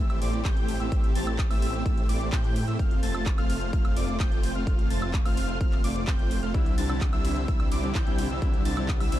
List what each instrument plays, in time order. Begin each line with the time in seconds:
Already playing: string section A3 C4 G4
0.00 detuned saw bass A1, supersaw synth A3 E4 G4 C5 E5, analog synth lead E6
0.10 closed hi-hat, high woodblock
0.21 detuned saw bass A1, supersaw synth A3 E4 G4 C5 D5, analog synth lead D6, open hi-hat
0.33 closed hi-hat
0.45 detuned saw bass A1, supersaw synth E4 C5, analog synth lead G6, kick, clap, closed hi-hat
0.57 closed hi-hat
0.69 open hi-hat
0.80 detuned saw bass A1, supersaw synth A3 E4 G4 C5 E5, analog synth lead E6
0.92 detuned saw bass A1, supersaw synth A3 E4 G4 C5 E5, analog synth lead E6, kick, closed hi-hat
1.04 closed hi-hat
1.15 detuned saw bass A1, supersaw synth A3 E4 G4 C5 A5, analog synth lead A6, open hi-hat
1.27 high woodblock
1.39 kick, clap, closed hi-hat
1.50 detuned saw bass A1, supersaw synth A3 E4 G4 C5 E5, analog synth lead E6, open hi-hat, high woodblock
1.62 open hi-hat
1.74 closed hi-hat
1.86 detuned saw bass A1, supersaw synth A3 E4 G4 E5, analog synth lead E6, kick, closed hi-hat
1.97 closed hi-hat
2.09 detuned saw bass A1, supersaw synth A3 E4 G4 C5 D5, analog synth lead D6, open hi-hat
2.21 closed hi-hat
2.32 detuned saw bass A2, supersaw synth A3 E4 G4 G5, analog synth lead G6, kick, clap, closed hi-hat
2.44 closed hi-hat
2.56 open hi-hat
2.68 detuned saw bass A2, supersaw synth A3 E4 G4 C5 E5, analog synth lead E6, closed hi-hat
2.79 detuned saw bass F1, supersaw synth A3 C4 F4 F5, string section F4, analog synth lead F6, kick, closed hi-hat
2.91 closed hi-hat
3.03 detuned saw bass F1, supersaw synth A3 C4 F4 C5 A5, analog synth lead A6, open hi-hat
3.15 closed hi-hat, high woodblock
3.26 kick, clap, closed hi-hat
3.38 detuned saw bass F1, supersaw synth A3 C4 F4 C5 F5, analog synth lead F6, closed hi-hat, high woodblock
3.50 open hi-hat
3.73 detuned saw bass F1, supersaw synth A3 F4 F5, analog synth lead F6, kick, closed hi-hat
3.85 closed hi-hat, high woodblock
3.96 detuned saw bass F1, supersaw synth A3 C4 F4 C5 D5, analog synth lead D6, open hi-hat
4.08 closed hi-hat
4.20 detuned saw bass F1, supersaw synth C4 G5, analog synth lead G6, kick, clap, closed hi-hat
4.32 closed hi-hat
4.43 open hi-hat
4.55 detuned saw bass F1, supersaw synth A3 C4 F4 C5 F5, analog synth lead F6, closed hi-hat
4.67 detuned saw bass F1, supersaw synth A3 C4 F4 C5 F5, analog synth lead F6, kick, closed hi-hat
4.79 closed hi-hat
4.90 detuned saw bass F1, supersaw synth A3 C4 F4 C5 A5, analog synth lead A6, open hi-hat
5.02 closed hi-hat, high woodblock
5.14 kick, clap, closed hi-hat
5.26 detuned saw bass F1, supersaw synth A3 C4 F4 C5 F5, analog synth lead F6, open hi-hat, high woodblock
5.37 open hi-hat
5.61 detuned saw bass F1, supersaw synth A3 C4 F4 C5, analog synth lead F6, kick, closed hi-hat
5.72 clap, closed hi-hat
5.84 detuned saw bass F1, supersaw synth A3 C4 F4 C5 D5, analog synth lead D6, open hi-hat
5.96 closed hi-hat
6.07 detuned saw bass F1, supersaw synth C4 G5, analog synth lead G6, kick, clap, closed hi-hat
6.19 closed hi-hat
6.31 open hi-hat
6.43 detuned saw bass F1, supersaw synth A3 C4 F4 C5 F5, analog synth lead F6, closed hi-hat
6.54 detuned saw bass C2, string section C3 C4 D4 E4 G4, grand piano D3 G3 C4 E4, supersaw synth G3 D4, analog synth lead E6, kick, closed hi-hat
6.66 closed hi-hat
6.78 detuned saw bass C2, supersaw synth G3 D4 E4 C5 A5, analog synth lead A6, open hi-hat, ride
6.89 grand piano D3 G3 C4 E4, high woodblock
7.01 kick, clap, closed hi-hat
7.13 detuned saw bass C2, supersaw synth G3 D4 E4 C5 E5, analog synth lead E6, closed hi-hat, high woodblock
7.24 grand piano D3 G3 C4 E4, open hi-hat, ride
7.36 closed hi-hat
7.48 detuned saw bass C2, supersaw synth G3 D4 E4 C5 E5, analog synth lead E6, kick, closed hi-hat
7.60 closed hi-hat, high woodblock
7.72 detuned saw bass C2, supersaw synth G3 D4 E4 C5 D5, analog synth lead D6, open hi-hat, ride
7.83 grand piano D3 G3 C4 E4, closed hi-hat
7.95 detuned saw bass C2, supersaw synth G3 D4 E4, analog synth lead G6, kick, clap, closed hi-hat
8.06 grand piano D3 G3 C4 E4, closed hi-hat
8.18 grand piano D3 G3 C4 E4, open hi-hat, ride
8.30 detuned saw bass C2, supersaw synth G3 D4 E4 C5 E5, analog synth lead E6, closed hi-hat
8.41 detuned saw bass C2, grand piano D3 G3 C4 E4, supersaw synth G3 D4 C5 E5, analog synth lead E6, kick, closed hi-hat
8.54 closed hi-hat
8.65 detuned saw bass C2, supersaw synth G3 D4 E4 C5 A5, analog synth lead A6, open hi-hat, ride
8.77 grand piano D3 G3 C4 E4, closed hi-hat, high woodblock
8.89 kick, clap, closed hi-hat
9.01 detuned saw bass C2, supersaw synth G3 D4 E4 C5 E5, analog synth lead E6, open hi-hat, high woodblock
9.12 grand piano D3 G3 C4 E4, open hi-hat, ride